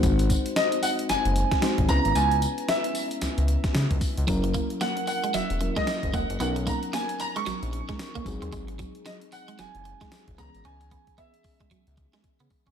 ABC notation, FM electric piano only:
X:1
M:4/4
L:1/8
Q:"Swing 16ths" 1/4=113
K:C#dor
V:1 name="FM electric piano"
[G,^B,DF^B]6 [G,B,DFB] [G,=B,CE=B]- | [G,B,CEB]6- [G,B,CEB] z | [F,A,CEA]4- [F,A,CEA] [F,A,CEA]3 | [F,B,CDA]6- [F,B,CDA] [F,G,^B,DG]- |
[F,G,^B,DG]6- [F,G,B,DG] [E,G,=B,CG]- | [E,G,B,CG]6- [E,G,B,CG] z |]